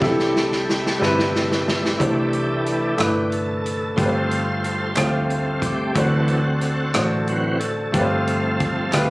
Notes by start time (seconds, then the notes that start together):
0.00 C2 C3 E3 G3 A3 C4 D4 E4 A4 E5 G5 A5, kick, snare
0.19 snare
0.36 snare
0.52 snare
0.69 snare
0.86 snare
0.99 G1 G3 A3 C4 E4 B4, snare
1.19 snare
1.35 snare
1.52 snare
1.68 snare
1.85 snare
1.98 C2 C3 E3 A3 D4 E4 G4 C5, kick, closed hi-hat
2.33 closed hi-hat
2.66 cross-stick, closed hi-hat
2.97 G1 A3 D4 E4 G4 B4, cross-stick, clap, closed hi-hat
3.30 A4, closed hi-hat
3.62 A4
3.66 closed hi-hat
3.96 G1 G2 F3 A3 C4 F4 G4 A4 B4 C5, kick, closed hi-hat
4.06 C5
4.31 closed hi-hat
4.64 closed hi-hat
4.96 D2 F3 A3 C4 F4 G4 C5, cross-stick, clap, closed hi-hat
5.30 closed hi-hat
5.62 G4, kick, closed hi-hat
5.95 D2 D3 E3 F#3 A3 C4 D4 F#4 A4 C5, kick, closed hi-hat
6.28 closed hi-hat
6.61 cross-stick, closed hi-hat
6.93 A1 A3 D4 F#4 A4 C5, cross-stick, clap, closed hi-hat
7.27 E3 F#3 C4 F#4, closed hi-hat
7.60 A4, closed hi-hat
7.92 G1 G2 F3 A3 C4 F4 G4 A4 B4, kick, closed hi-hat
8.01 C5
8.27 closed hi-hat
8.60 kick, closed hi-hat
8.91 D2 A3 C4 F4 G4 B4, cross-stick, clap, closed hi-hat